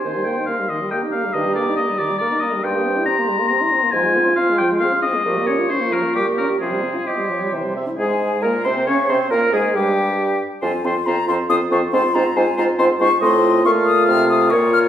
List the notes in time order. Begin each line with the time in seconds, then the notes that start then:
Already playing: G#5 C6
0.04 D#2 D#3 C5
0.16 G3
0.25 A#3 G5
0.38 D#4
0.46 A#3 A#4 F5
0.59 G3
0.69 D#3 D#5
0.81 G3
0.90 A#3 G4 G5 A#5
1.04 D#4
1.12 A#3 F5
1.25 G3
1.33 G2 D#3 G4 D#5
1.45 G3
1.55 A#3 D5
1.67 D#4
1.76 A#3 D#5
1.89 G3
1.98 D#3 D5
2.11 G3
2.18 A#3 A#4 D5
2.32 D#4
2.40 A#3 D#5
2.54 G3
2.63 G2 G3 G4 G5 C6
2.75 A#3
2.86 C4
2.97 E4
3.06 C4 A#5
3.18 A#3
3.29 G3
3.39 A#3
3.48 C4 A#5
3.61 E4
3.72 C4
3.83 A#3
3.92 G#2 F3 F4 G#5
4.06 G#3
4.17 C4
4.28 F4
4.36 C4 F5
4.49 G#3
4.58 F3 G5
4.72 G#3
4.80 C4 G#4 F5
4.93 F4
5.02 C4 D#5
5.15 G#3
5.26 A#2 F3 G4 C#6
5.37 A#3
5.47 C#4 C#5
5.59 F4
5.69 C#4 F4 C5
5.81 A#3
5.92 F3 A#4
6.03 A#3
6.15 A#2 G3 G4
6.26 A#3
6.38 C#4 A#4
6.49 G4
6.60 C3 F3 G#4 C5 C6
6.71 G3
6.83 C4
6.95 F4
7.06 C4 G4 D#5
7.18 G3
7.29 F3 C#5
7.41 G3
7.52 C3 E3 C5
7.64 G3
7.75 C4 E5
7.87 E4
7.98 G#2 G#3 G#4 G#5
8.42 A#2 A#3 A#4 A#5
8.64 C3 C4 C5 C6
8.87 C#3 C#4 C#5 C#6
9.09 C3 C4 C5 C6
9.31 A#2 A#3 A#4 A#5
9.52 G#2 G#3 G#4 G#5
9.75 G2 G3 G4 G5
10.62 F2 C4 F4 C5 G#5
10.84 F2 C4 F4 C5 C6
11.06 F2 C4 F4 C5 A#5
11.28 F2 C4 F4 C5 C6
11.49 F2 C4 F4 C5 D#6
11.71 F2 C4 F4 C5 C#6
11.92 G#2 C4 F4 C5 C6
12.15 G#2 C4 F4 C5 A#5
12.36 G#2 C4 F4 C5 G#5
12.57 G#2 C4 F4 C5 A#5
12.79 G#2 C4 F4 C5 C6
13.01 G#2 C4 F4 C5 C#6
13.21 A2 C4 F4 D#5 C6
13.65 A#2 A3 F4 F5 C#6
13.86 D#6
14.07 C3 F6
14.29 D#6
14.50 A#2 A#3 F4 C#5 C#6
14.73 F6